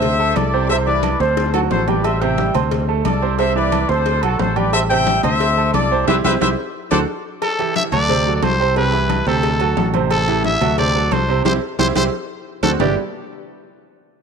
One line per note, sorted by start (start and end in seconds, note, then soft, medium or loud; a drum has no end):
0.00 0.32 D2 loud
0.00 0.13 C4 medium
0.00 0.13 C5 medium
0.00 0.36 C5 medium
0.00 0.36 E5 loud
0.00 0.14 C6 medium
0.00 cowbell loud
0.00 high conga soft
0.00 low conga medium
0.00 low agogo medium
0.19 0.47 A3 medium
0.19 0.47 A4 medium
0.19 0.47 A5 medium
0.19 high conga soft
0.36 1.14 C2 medium
0.36 0.70 A4 medium
0.36 0.70 D5 loud
0.36 cowbell medium
0.36 high conga medium
0.36 low timbale medium
0.36 low agogo loud
0.53 0.67 C3 medium
0.53 0.67 C4 medium
0.53 0.67 C5 medium
0.53 high conga soft
0.69 0.84 C3 medium
0.69 0.84 C4 medium
0.69 0.78 C5 medium
0.69 0.84 C5 medium
0.69 0.77 E5 loud
0.69 cowbell loud
0.69 high conga soft
0.69 low agogo medium
0.86 1.14 E3 medium
0.86 1.14 E4 medium
0.86 1.18 B4 medium
0.86 1.18 D5 loud
0.86 1.15 E5 medium
0.86 high conga soft
1.03 cowbell medium
1.03 high conga loud
1.03 low timbale medium
1.03 low agogo loud
1.20 1.67 D2 medium
1.20 1.48 C4 medium
1.20 1.53 A4 medium
1.20 1.54 C5 loud
1.20 1.48 C5 medium
1.20 1.48 C6 medium
1.20 cowbell medium
1.20 high conga soft
1.37 cowbell loud
1.37 high bongo medium
1.37 high conga soft
1.37 low agogo medium
1.54 1.81 F#3 medium
1.54 1.82 F#4 medium
1.54 1.62 F#4 medium
1.54 1.61 A4 medium
1.54 1.82 F#5 medium
1.54 high bongo medium
1.54 high conga soft
1.54 low agogo loud
1.71 2.49 A1 medium
1.71 1.87 A4 medium
1.71 1.87 C5 medium
1.71 cowbell medium
1.71 high conga medium
1.71 low timbale medium
1.88 2.15 G3 medium
1.88 2.15 G4 medium
1.88 2.05 B4 medium
1.88 2.05 D5 medium
1.88 2.16 G5 medium
1.88 low bongo medium
1.88 high conga medium
1.88 low agogo medium
2.04 2.22 C5 medium
2.04 2.21 E5 medium
2.04 cowbell loud
2.04 high conga soft
2.04 low agogo loud
2.21 2.35 C3 loud
2.21 2.35 C4 medium
2.21 2.35 C5 medium
2.21 2.55 E5 medium
2.21 2.55 G5 medium
2.21 high conga soft
2.21 low agogo medium
2.38 2.52 G3 medium
2.38 2.52 G4 medium
2.38 2.52 G5 medium
2.38 cowbell medium
2.38 high conga medium
2.38 low timbale medium
2.54 3.02 D2 loud
2.54 2.82 C4 medium
2.54 2.83 C5 medium
2.54 2.83 C6 medium
2.54 cowbell medium
2.54 high conga soft
2.54 low conga medium
2.54 low agogo loud
2.71 cowbell loud
2.71 high conga soft
2.71 low conga medium
2.71 low agogo medium
2.88 3.16 A3 medium
2.88 3.16 A4 medium
2.88 3.16 A5 medium
2.88 high conga soft
3.05 3.84 C2 loud
3.05 3.37 A4 medium
3.05 3.37 D5 medium
3.05 cowbell medium
3.05 high conga medium
3.05 low timbale medium
3.05 low agogo loud
3.22 3.36 C3 medium
3.22 3.36 C4 loud
3.22 3.36 C5 medium
3.22 high conga soft
3.39 3.53 C3 medium
3.39 3.53 C4 medium
3.39 3.55 C5 medium
3.39 3.53 C5 medium
3.39 3.55 E5 loud
3.39 cowbell loud
3.39 high conga soft
3.39 low agogo medium
3.55 3.83 E3 medium
3.55 3.83 E4 medium
3.55 3.87 B4 medium
3.55 3.87 D5 loud
3.55 3.83 E5 medium
3.55 high conga soft
3.72 cowbell medium
3.72 high conga medium
3.72 low timbale medium
3.72 low agogo loud
3.89 4.20 D2 loud
3.89 4.17 C4 medium
3.89 4.21 A4 medium
3.89 4.17 C5 medium
3.89 4.23 C5 loud
3.89 4.17 C6 medium
3.89 cowbell medium
3.89 high conga soft
4.06 cowbell loud
4.06 high conga soft
4.06 low agogo medium
4.23 4.39 B1 medium
4.23 4.51 F#3 medium
4.23 4.51 F#4 medium
4.23 4.40 F#4 medium
4.23 4.39 A4 medium
4.23 4.51 F#5 medium
4.23 high conga soft
4.23 low agogo loud
4.39 5.18 A1 loud
4.39 4.57 A4 medium
4.39 4.57 C5 loud
4.39 cowbell medium
4.39 high conga medium
4.39 low timbale medium
4.56 4.84 G3 medium
4.56 4.84 G4 medium
4.56 4.74 B4 medium
4.56 4.73 D5 medium
4.56 4.84 G5 medium
4.56 high conga medium
4.56 low agogo medium
4.73 4.82 C5 medium
4.73 4.81 E5 loud
4.73 cowbell loud
4.73 high conga soft
4.73 low agogo loud
4.90 5.04 C3 loud
4.90 5.04 C4 loud
4.90 5.04 C5 medium
4.90 5.22 E5 medium
4.90 5.21 G5 loud
4.90 high conga soft
4.90 low agogo medium
5.07 5.21 G3 medium
5.07 5.21 G4 medium
5.07 5.21 G5 medium
5.07 cowbell medium
5.07 high conga loud
5.07 low timbale medium
5.23 5.71 D2 loud
5.23 5.51 C4 medium
5.23 5.52 C5 medium
5.23 5.71 C5 medium
5.23 5.71 E5 loud
5.23 5.52 C6 medium
5.23 cowbell medium
5.23 high conga soft
5.23 low conga medium
5.23 low agogo loud
5.40 cowbell loud
5.40 high conga soft
5.40 low agogo medium
5.57 5.85 A3 medium
5.57 5.85 A4 medium
5.57 5.85 A5 medium
5.57 high conga soft
5.74 6.05 C2 loud
5.74 6.06 A4 medium
5.74 6.05 D5 loud
5.74 cowbell medium
5.74 high conga medium
5.74 low timbale medium
5.74 low agogo loud
5.91 6.05 C3 medium
5.91 6.05 C4 medium
5.91 6.05 C5 medium
5.91 high conga soft
6.08 6.20 C2 loud
6.08 6.19 C4 loud
6.08 6.19 E4 loud
6.08 6.19 G4 loud
6.08 6.16 B4 loud
6.08 6.16 C5 loud
6.08 6.16 E5 loud
6.08 cowbell loud
6.08 high conga loud
6.08 high timbale loud
6.24 6.37 C2 loud
6.24 6.35 C4 loud
6.24 6.35 E4 loud
6.24 6.35 G4 loud
6.24 6.33 B4 loud
6.24 6.33 C5 loud
6.24 6.33 E5 loud
6.24 cowbell loud
6.24 high conga loud
6.24 high timbale medium
6.41 6.54 C2 loud
6.41 6.52 C4 loud
6.41 6.52 E4 medium
6.41 6.52 G4 medium
6.41 6.49 B4 medium
6.41 6.49 C5 loud
6.41 6.49 E5 loud
6.41 cowbell medium
6.41 high conga medium
6.41 high timbale loud
6.91 7.04 D2 loud
6.91 7.02 D4 loud
6.91 7.02 F#4 loud
6.91 6.99 A4 loud
6.91 7.02 A4 loud
6.91 6.99 C5 loud
6.91 6.99 D5 loud
6.91 cowbell loud
6.91 high conga loud
6.91 high timbale loud
7.42 7.74 A4 loud
7.42 cowbell loud
7.42 high conga soft
7.42 low agogo loud
7.59 7.87 E3 medium
7.59 7.87 E4 medium
7.59 7.87 G4 medium
7.59 high conga soft
7.59 low agogo medium
7.76 7.83 E5 loud
7.76 cowbell medium
7.76 high conga loud
7.76 low timbale medium
7.92 8.39 D2 loud
7.92 8.07 F#3 medium
7.92 8.07 F#4 medium
7.92 8.07 A4 medium
7.92 8.33 D5 loud
7.92 cowbell medium
7.92 high conga soft
7.92 low conga medium
7.92 low agogo loud
8.09 8.23 C3 medium
8.09 8.23 C4 medium
8.09 8.23 C5 medium
8.09 cowbell loud
8.09 high conga soft
8.09 low conga medium
8.09 low agogo medium
8.26 8.54 F#3 medium
8.26 8.54 F#4 medium
8.26 8.54 A4 medium
8.26 high conga soft
8.36 8.45 D5 medium
8.42 9.21 C2 loud
8.42 8.76 C5 loud
8.42 cowbell medium
8.42 high conga medium
8.42 low timbale medium
8.42 low agogo loud
8.59 8.74 C3 medium
8.59 8.74 C4 medium
8.59 8.74 C5 medium
8.59 high conga soft
8.76 8.90 C3 medium
8.76 8.90 C4 medium
8.76 9.23 B4 loud
8.76 8.91 C5 medium
8.76 cowbell loud
8.76 high conga soft
8.76 low agogo medium
8.93 9.21 E3 medium
8.93 9.21 E4 medium
8.93 9.21 G4 medium
8.93 high conga soft
9.10 cowbell medium
9.10 high conga medium
9.10 low timbale medium
9.10 low agogo loud
9.27 9.74 D2 loud
9.27 9.54 C3 loud
9.27 9.54 C4 loud
9.27 9.90 A4 medium
9.27 9.55 C5 loud
9.27 cowbell medium
9.27 high conga soft
9.43 cowbell loud
9.43 high conga soft
9.43 low agogo medium
9.60 9.74 F#3 medium
9.60 9.74 F#4 medium
9.60 9.75 A4 medium
9.60 high conga soft
9.60 low agogo loud
9.77 10.55 A1 loud
9.77 9.91 F#3 medium
9.77 9.92 F#4 medium
9.77 9.92 A4 medium
9.77 cowbell medium
9.77 high conga medium
9.77 low timbale medium
9.94 10.21 C3 medium
9.94 10.22 C4 medium
9.94 10.22 C5 medium
9.94 high conga medium
9.94 low agogo medium
10.11 10.42 A4 loud
10.11 cowbell loud
10.11 low agogo loud
10.28 10.55 E3 medium
10.28 10.55 E4 medium
10.28 10.56 G4 medium
10.28 high conga soft
10.28 low agogo medium
10.44 10.76 E5 loud
10.44 cowbell medium
10.44 high conga medium
10.44 low timbale medium
10.61 11.08 D2 loud
10.61 10.75 F#3 medium
10.61 10.75 F#4 medium
10.61 10.75 A4 medium
10.61 cowbell medium
10.61 high conga soft
10.61 low conga medium
10.61 low agogo loud
10.78 10.92 C3 medium
10.78 10.92 C4 medium
10.78 10.92 C5 medium
10.78 11.14 D5 loud
10.78 cowbell loud
10.78 high conga soft
10.78 low conga medium
10.78 low agogo medium
10.95 11.23 F#3 medium
10.95 11.23 F#4 medium
10.95 11.23 A4 medium
10.95 high conga soft
11.11 11.43 C2 loud
11.11 11.44 C5 medium
11.11 cowbell medium
11.11 high conga medium
11.11 low timbale medium
11.11 low agogo loud
11.29 11.42 C3 medium
11.29 11.43 C4 medium
11.29 11.43 C5 medium
11.29 high conga soft
11.45 11.58 C2 loud
11.45 11.56 C4 loud
11.45 11.56 E4 loud
11.45 11.56 G4 loud
11.45 11.53 C5 medium
11.45 cowbell loud
11.45 high conga loud
11.45 high timbale loud
11.79 11.91 C2 loud
11.79 11.90 C4 loud
11.79 11.90 E4 loud
11.79 11.90 G4 medium
11.79 11.87 C5 loud
11.79 cowbell loud
11.79 high conga loud
11.79 high timbale loud
11.95 12.08 C2 loud
11.95 12.07 C4 loud
11.95 12.07 E4 loud
11.95 12.07 G4 loud
11.95 12.04 C5 loud
11.95 cowbell loud
11.95 high conga loud
11.95 high timbale loud
12.63 12.75 D2 loud
12.63 12.74 C4 loud
12.63 12.74 D4 medium
12.63 12.74 F#4 medium
12.63 12.71 A4 loud
12.63 cowbell loud
12.63 high conga loud
12.63 high timbale loud
12.80 12.95 G1 loud
12.80 12.96 G3 loud
12.80 12.96 D4 medium
12.80 12.96 E4 medium
12.80 12.96 G4 medium
12.80 12.96 B4 medium
12.80 12.96 D5 loud
12.80 low bongo medium
12.80 low conga loud
12.80 low timbale loud